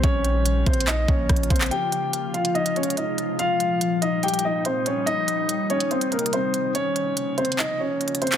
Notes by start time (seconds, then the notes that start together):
0.04 A#1 C#3 F3 A#3 C#4 F4 C#5, kick, closed hi-hat
0.25 closed hi-hat
0.46 closed hi-hat
0.66 A#1 C4 C5, kick, closed hi-hat
0.73 closed hi-hat
0.80 closed hi-hat
0.87 D#4 D#5, clap, closed hi-hat
1.08 A#1 C#4 C#5, kick
1.29 A#1, kick, cross-stick, closed hi-hat
1.36 closed hi-hat
1.43 closed hi-hat
1.50 A#1 C4 C5, kick, closed hi-hat
1.56 closed hi-hat
1.61 clap, closed hi-hat
1.66 closed hi-hat
1.71 C3 F3 G#3 F4 G4 G5, closed hi-hat
1.92 closed hi-hat
2.13 closed hi-hat
2.34 F4 F5, closed hi-hat
2.45 closed hi-hat
2.55 D#4 D#5, closed hi-hat
2.66 closed hi-hat
2.76 C#4 C#5, closed hi-hat
2.83 closed hi-hat
2.90 closed hi-hat
2.97 D#4 D#5, closed hi-hat
3.18 closed hi-hat
3.39 A#2 G3 D#4 F4 F5, closed hi-hat
3.60 closed hi-hat
3.81 closed hi-hat
4.02 D#4 D#5, closed hi-hat
4.23 G4 G5, closed hi-hat
4.28 closed hi-hat
4.34 closed hi-hat
4.39 closed hi-hat
4.45 D#4 D#5
4.65 C4 C5, closed hi-hat
4.86 C#4 C#5, closed hi-hat
5.06 C3 D#3 D#4 D#5, closed hi-hat
5.28 closed hi-hat
5.49 closed hi-hat
5.70 C#4 C#5, closed hi-hat
5.80 closed hi-hat
5.91 C4 C5, closed hi-hat
6.01 closed hi-hat
6.12 A#3 A#4, closed hi-hat
6.19 closed hi-hat
6.26 closed hi-hat
6.33 C4 C5, closed hi-hat
6.54 closed hi-hat
6.75 C#3 F3 A#3 C#4 F4 C#5, closed hi-hat
6.96 closed hi-hat
7.17 closed hi-hat
7.38 C4 C5, closed hi-hat
7.45 closed hi-hat
7.52 closed hi-hat
7.59 D#4 D#5, clap, closed hi-hat
7.80 C#4 C#5
8.01 closed hi-hat
8.08 closed hi-hat
8.15 closed hi-hat
8.22 C4 C5, closed hi-hat
8.27 closed hi-hat
8.32 clap, closed hi-hat